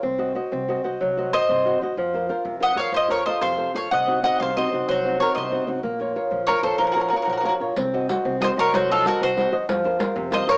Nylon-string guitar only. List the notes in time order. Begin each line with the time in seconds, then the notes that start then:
0.03 C4
0.18 F#4 C5 D#5
0.35 F#4 C5 D#5
0.52 C4
0.68 F#4 C5 D#5
0.84 F#4 C5 D#5
1.01 F#3
1.17 F#4 C5 D#5
1.33 F#4 C5 D#5
1.49 C4
1.65 F#4 C5 D#5
1.82 F#4 C5 D#5
1.98 F3
2.14 F4 A#4 C5
2.29 F4 A#4 C5
2.45 C3
2.60 F4 A#4 C5
2.76 F4 A#4 C5
2.92 F3
3.08 F4 A4 C5
3.26 F4 A4 C5
3.41 C3
3.57 F4 A4 C5
3.74 F4 A4 C5
3.92 C3
4.07 C4 D#4 F#4
4.23 C4 D#4 F#4
4.40 C3
4.56 C4 D#4 F#4
4.73 C4 D#4 F#4
4.89 F#3
5.05 C4 D#4 F#4
5.19 C4 D#4 F#4
5.36 C3
5.51 C4 D#4 F#4
5.67 C4 D#4 F#4
5.83 A#3
5.99 F4 A#4 C#5
6.16 F4 A#4 C#5
6.31 F3
6.48 F4 C#5
6.63 F4 A#4 C#5
6.79 F3
6.95 F4 A#4 C#5
7.12 F4 A#4 C#5
7.28 F3
7.43 F4 A#4 C#5
7.60 F4 A#4 C#5
7.77 C4
7.94 F#4 C5 D#5
8.10 F#4 C5 D#5
8.25 C4
8.41 F#4 C5 D#5
8.57 F#4 C5 D#5
8.74 F#3
8.90 F#4 C5 D#5
9.05 F#4 C5 D#5
9.21 C4
9.37 F#4 C5 D#5
9.52 F#4 C5 D#5
9.69 F3
9.84 F4 A#4 C5
9.99 F4 A#4 C5
10.16 C3
10.31 F4 A#4 C5
10.47 F4 A#4 C5